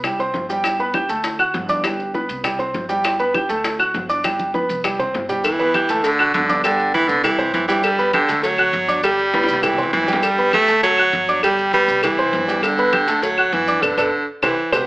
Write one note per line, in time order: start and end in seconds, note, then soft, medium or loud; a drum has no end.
0.00 0.31 C2 medium
0.00 high bongo medium
0.00 claves medium
0.04 0.16 G3 medium
0.04 0.17 G4 medium
0.04 0.17 G5 medium
0.04 high conga soft
0.04 low conga medium
0.04 maracas medium
0.19 0.44 C4 medium
0.19 0.44 C5 medium
0.19 0.44 C6 medium
0.19 high bongo soft
0.19 high conga soft
0.19 maracas soft
0.34 1.04 G1 loud
0.34 high bongo soft
0.34 low bongo medium
0.34 high conga medium
0.34 maracas soft
0.49 0.74 G3 medium
0.49 0.74 G4 medium
0.49 0.74 G5 medium
0.49 high bongo soft
0.49 maracas medium
0.64 high bongo medium
0.64 high conga soft
0.64 claves medium
0.64 maracas loud
0.79 0.92 B3 medium
0.79 0.92 B4 medium
0.79 0.92 B5 medium
0.79 high bongo soft
0.79 high conga soft
0.79 maracas soft
0.94 1.06 G4 medium
0.94 1.07 G5 medium
0.94 1.07 G6 medium
0.94 high bongo medium
0.94 high conga loud
0.94 claves medium
0.94 maracas soft
1.09 1.51 D2 medium
1.09 1.34 A3 medium
1.09 1.34 A4 medium
1.09 1.34 A5 medium
1.09 high conga soft
1.09 maracas medium
1.24 high bongo medium
1.24 high conga soft
1.24 maracas medium
1.39 1.64 F#4 medium
1.39 1.64 F#5 medium
1.39 1.64 F#6 medium
1.39 high bongo soft
1.39 high conga soft
1.39 claves medium
1.39 maracas soft
1.54 2.24 G1 loud
1.54 high bongo soft
1.54 low bongo medium
1.54 high conga medium
1.54 maracas soft
1.69 1.81 D4 medium
1.69 1.82 D5 medium
1.69 1.82 D6 medium
1.69 high bongo soft
1.69 high conga medium
1.69 maracas medium
1.84 2.09 G3 medium
1.84 2.09 G4 medium
1.84 2.09 G5 medium
1.84 high bongo medium
1.84 high conga soft
1.84 claves medium
1.84 maracas medium
1.99 high bongo soft
1.99 high conga soft
1.99 maracas soft
2.14 2.39 B3 medium
2.14 2.39 B4 medium
2.14 2.39 B5 medium
2.14 high bongo medium
2.14 high conga medium
2.14 maracas soft
2.29 2.71 C2 loud
2.29 high conga soft
2.29 maracas medium
2.44 2.56 G3 medium
2.44 2.56 G4 medium
2.44 2.57 G5 medium
2.44 high bongo medium
2.44 high conga soft
2.44 low conga medium
2.44 claves medium
2.44 maracas medium
2.59 2.84 C4 medium
2.59 2.84 C5 medium
2.59 2.84 C6 medium
2.59 high bongo soft
2.59 high conga soft
2.59 maracas soft
2.74 3.44 G1 loud
2.74 high bongo soft
2.74 low bongo medium
2.74 high conga medium
2.74 maracas soft
2.89 3.14 G3 medium
2.89 3.14 G4 medium
2.89 3.14 G5 medium
2.89 high bongo soft
2.89 maracas medium
3.04 high bongo medium
3.04 high conga soft
3.04 claves medium
3.04 maracas medium
3.19 3.32 B3 medium
3.19 3.32 B4 medium
3.19 3.32 B5 medium
3.19 high bongo soft
3.19 high conga soft
3.19 maracas soft
3.34 3.47 G4 medium
3.34 3.47 G5 medium
3.34 3.47 G6 medium
3.34 high bongo medium
3.34 high conga loud
3.34 claves medium
3.34 maracas soft
3.49 3.91 D2 medium
3.49 3.74 A3 medium
3.49 3.74 A4 medium
3.49 3.74 A5 medium
3.49 high conga soft
3.49 maracas medium
3.64 high bongo medium
3.64 high conga soft
3.64 maracas medium
3.79 4.04 F#4 medium
3.79 4.04 F#5 medium
3.79 4.04 F#6 medium
3.79 high bongo soft
3.79 high conga soft
3.79 claves medium
3.79 maracas soft
3.94 4.64 G1 loud
3.94 high bongo soft
3.94 low bongo medium
3.94 high conga medium
3.94 maracas soft
4.09 4.21 D4 medium
4.09 4.21 D5 medium
4.09 4.22 D6 medium
4.09 high bongo soft
4.09 maracas medium
4.24 4.49 G3 medium
4.24 4.49 G4 medium
4.24 4.49 G5 medium
4.24 high bongo medium
4.24 high conga loud
4.24 claves medium
4.24 maracas loud
4.39 high bongo soft
4.39 high conga loud
4.39 maracas soft
4.54 4.79 B3 medium
4.54 4.79 B4 medium
4.54 4.79 B5 medium
4.54 high bongo medium
4.54 high conga medium
4.54 maracas soft
4.69 5.11 C2 medium
4.69 high conga medium
4.69 maracas medium
4.84 4.96 G3 medium
4.84 4.97 G4 medium
4.84 4.97 G5 medium
4.84 high bongo medium
4.84 claves medium
4.84 maracas medium
4.99 5.24 C4 medium
4.99 5.24 C5 medium
4.99 5.24 C6 medium
4.99 high bongo soft
4.99 low conga medium
4.99 maracas soft
5.14 5.84 G1 loud
5.14 high bongo soft
5.14 low bongo medium
5.14 maracas soft
5.29 5.41 G3 medium
5.29 5.42 G4 medium
5.29 5.42 G5 medium
5.29 high bongo soft
5.29 low conga medium
5.29 maracas medium
5.44 6.05 E3 medium
5.44 cowbell loud
5.44 high conga soft
5.44 claves medium
5.44 maracas medium
5.59 5.71 B3 medium
5.59 5.72 B4 medium
5.59 5.72 B5 medium
5.59 high conga soft
5.59 maracas soft
5.74 5.87 G4 medium
5.74 5.87 G5 medium
5.74 5.87 G6 medium
5.74 cowbell medium
5.74 high conga loud
5.74 claves medium
5.74 maracas soft
5.89 6.31 D2 medium
5.89 6.14 A3 medium
5.89 6.14 A4 medium
5.89 6.14 A5 medium
5.89 cowbell medium
5.89 high conga soft
5.89 maracas medium
6.04 6.34 D3 medium
6.04 cowbell loud
6.04 high conga soft
6.04 maracas medium
6.19 6.44 F#4 medium
6.19 6.44 F#5 medium
6.19 6.44 F#6 medium
6.19 high conga soft
6.19 claves medium
6.19 maracas soft
6.34 7.03 G1 loud
6.34 6.62 D3 medium
6.34 cowbell medium
6.34 high conga medium
6.34 maracas soft
6.49 6.61 D4 medium
6.49 6.62 D5 medium
6.49 6.62 D6 medium
6.49 high conga medium
6.49 maracas medium
6.64 6.92 D3 medium
6.64 6.89 G3 medium
6.64 6.89 G4 medium
6.64 6.89 G5 medium
6.64 cowbell loud
6.64 high conga soft
6.64 claves medium
6.64 maracas loud
6.79 high conga soft
6.79 maracas soft
6.94 7.10 E3 loud
6.94 7.18 B3 medium
6.94 7.19 B4 medium
6.94 7.19 B5 medium
6.94 cowbell medium
6.94 high conga medium
6.94 maracas soft
7.09 7.51 C2 medium
7.09 7.23 D3 loud
7.09 high conga soft
7.09 maracas medium
7.23 7.52 E3 medium
7.23 7.36 G3 medium
7.23 7.36 G4 medium
7.23 7.36 G5 medium
7.23 cowbell loud
7.23 high conga soft
7.23 low conga medium
7.23 claves medium
7.23 maracas medium
7.38 7.63 C4 medium
7.38 7.63 C5 medium
7.38 7.63 C6 medium
7.38 high conga soft
7.38 low conga medium
7.38 maracas soft
7.54 8.23 G1 loud
7.54 7.68 E3 medium
7.54 cowbell medium
7.54 high conga medium
7.54 maracas soft
7.68 7.85 E3 medium
7.68 7.93 G3 medium
7.68 7.93 G4 loud
7.68 7.93 G5 medium
7.68 maracas medium
7.83 8.13 G3 loud
7.83 cowbell loud
7.83 high conga soft
7.83 claves medium
7.83 maracas medium
7.98 8.11 B3 medium
7.98 8.11 B4 medium
7.98 8.11 B5 medium
7.98 high conga soft
7.98 maracas soft
8.13 8.45 D3 loud
8.13 8.26 G4 medium
8.13 8.27 G5 medium
8.13 8.27 G6 medium
8.13 cowbell medium
8.13 high conga loud
8.13 claves medium
8.13 maracas soft
8.28 8.70 D2 medium
8.28 8.53 A3 medium
8.28 8.54 A4 medium
8.28 8.54 A5 medium
8.28 cowbell medium
8.28 high conga soft
8.28 maracas medium
8.43 9.03 F#3 loud
8.43 cowbell loud
8.43 high conga soft
8.43 maracas medium
8.58 8.83 F#4 medium
8.58 8.83 F#5 medium
8.58 8.83 F#6 medium
8.58 high conga soft
8.58 claves medium
8.58 maracas soft
8.73 9.43 G1 loud
8.73 cowbell medium
8.73 high conga medium
8.73 maracas soft
8.88 9.00 D4 medium
8.88 9.01 D5 medium
8.88 9.01 D6 medium
8.88 high conga medium
8.88 maracas medium
9.03 9.28 G3 medium
9.03 9.65 G3 loud
9.03 9.28 G4 medium
9.03 9.28 G5 medium
9.03 cowbell loud
9.03 high conga soft
9.03 claves medium
9.03 maracas medium
9.18 high conga soft
9.18 maracas soft
9.34 9.58 B3 medium
9.34 9.58 B4 medium
9.34 9.58 B5 medium
9.34 cowbell medium
9.34 high bongo loud
9.34 high conga medium
9.34 maracas soft
9.43 high bongo medium
9.48 9.90 C2 medium
9.48 high conga soft
9.48 maracas medium
9.53 high bongo loud
9.63 9.92 E3 loud
9.63 9.75 G3 medium
9.63 9.76 G4 medium
9.63 9.76 G5 medium
9.63 cowbell loud
9.63 low bongo medium
9.63 high conga soft
9.63 low conga medium
9.63 claves medium
9.63 maracas medium
9.73 low bongo medium
9.78 10.03 C4 medium
9.78 10.03 C5 medium
9.78 10.03 C6 medium
9.78 high conga soft
9.78 low conga medium
9.78 maracas soft
9.83 low bongo medium
9.93 10.62 G1 loud
9.93 10.25 E3 loud
9.93 cowbell medium
9.93 low bongo medium
9.93 high conga medium
9.93 maracas soft
10.03 low bongo medium
10.07 10.32 G3 medium
10.07 10.32 G4 medium
10.07 10.33 G5 medium
10.07 high conga medium
10.07 maracas medium
10.13 low bongo loud
10.23 10.53 G3 loud
10.23 cowbell loud
10.23 high conga soft
10.23 claves medium
10.23 maracas medium
10.38 10.50 B3 medium
10.38 10.51 B4 medium
10.38 10.51 B5 medium
10.38 high conga soft
10.38 maracas soft
10.53 10.81 A3 loud
10.53 10.66 G4 medium
10.53 10.66 G5 medium
10.53 10.66 G6 medium
10.53 cowbell medium
10.53 high conga loud
10.53 claves medium
10.53 maracas soft
10.68 11.10 D2 medium
10.68 10.93 A3 medium
10.68 10.93 A4 medium
10.68 10.93 A5 medium
10.68 cowbell medium
10.68 high conga soft
10.68 maracas medium
10.83 11.39 F#3 loud
10.83 cowbell medium
10.83 high conga soft
10.83 maracas medium
10.98 11.23 F#4 medium
10.98 11.23 F#5 medium
10.98 11.23 F#6 medium
10.98 high conga soft
10.98 claves medium
10.98 maracas soft
11.13 11.82 G1 loud
11.13 cowbell medium
11.13 high conga medium
11.13 maracas soft
11.28 11.40 D4 medium
11.28 11.41 D5 medium
11.28 11.41 D6 medium
11.28 maracas medium
11.43 11.68 G3 medium
11.43 11.71 G3 loud
11.43 11.68 G4 medium
11.43 11.68 G5 medium
11.43 cowbell loud
11.43 high conga soft
11.43 claves medium
11.43 maracas loud
11.58 high conga soft
11.58 maracas soft
11.73 12.01 G3 loud
11.73 11.98 B3 medium
11.73 11.98 B4 medium
11.73 11.98 B5 medium
11.73 cowbell medium
11.73 high conga medium
11.73 maracas soft
11.88 12.30 C2 loud
11.88 high conga soft
11.88 maracas medium
12.03 12.65 E3 loud
12.03 12.15 G3 medium
12.03 12.16 G4 medium
12.03 12.16 G5 medium
12.03 cowbell loud
12.03 high conga soft
12.03 low conga loud
12.03 claves medium
12.03 maracas medium
12.18 12.43 C4 medium
12.18 12.43 C5 medium
12.18 12.43 C6 medium
12.18 high conga soft
12.18 low conga medium
12.18 maracas soft
12.33 13.02 G1 loud
12.33 cowbell medium
12.33 high conga medium
12.33 maracas soft
12.48 12.72 G3 medium
12.48 12.73 G4 loud
12.48 12.73 G5 medium
12.48 maracas medium
12.63 13.25 D3 loud
12.63 cowbell loud
12.63 high conga soft
12.63 claves medium
12.63 maracas medium
12.78 12.90 B3 medium
12.78 12.91 B4 medium
12.78 12.91 B5 medium
12.78 high conga soft
12.78 maracas soft
12.93 13.05 G4 medium
12.93 13.05 G5 medium
12.93 13.05 G6 medium
12.93 cowbell medium
12.93 high conga loud
12.93 claves medium
12.93 maracas soft
13.08 13.49 D2 medium
13.08 13.32 A3 medium
13.08 13.32 A4 medium
13.08 13.33 A5 medium
13.08 cowbell medium
13.08 high conga soft
13.08 maracas medium
13.22 13.55 F#3 loud
13.22 cowbell loud
13.22 high conga soft
13.22 maracas loud
13.38 13.62 F#4 medium
13.38 13.62 F#5 medium
13.38 13.63 F#6 medium
13.38 high conga soft
13.38 claves medium
13.38 maracas soft
13.53 13.81 G1 loud
13.53 13.84 E3 loud
13.53 cowbell medium
13.53 high conga medium
13.53 maracas soft
13.67 13.80 D4 medium
13.67 13.80 D5 medium
13.67 13.80 D6 medium
13.67 high conga medium
13.67 maracas medium
13.82 13.94 G1 loud
13.82 14.26 D3 medium
13.82 13.92 A4 medium
13.82 13.92 B4 medium
13.82 13.92 D5 medium
13.82 cowbell medium
13.82 low conga loud
13.82 claves loud
13.82 maracas loud
13.97 14.08 G1 loud
13.97 14.07 A4 loud
13.97 14.07 B4 loud
13.97 14.07 D5 loud
13.97 cowbell loud
13.97 low conga loud
13.97 claves medium
13.97 maracas loud
14.42 14.53 C2 medium
14.42 14.75 E3 medium
14.42 14.52 G4 medium
14.42 14.52 B4 medium
14.42 14.52 C5 medium
14.42 cowbell medium
14.42 low conga loud
14.42 claves loud
14.42 maracas loud
14.72 14.84 C2 loud
14.72 14.87 B2 medium
14.72 14.82 G4 loud
14.72 14.82 B4 loud
14.72 14.82 C5 loud
14.72 cowbell loud
14.72 low conga medium
14.72 claves medium
14.72 maracas medium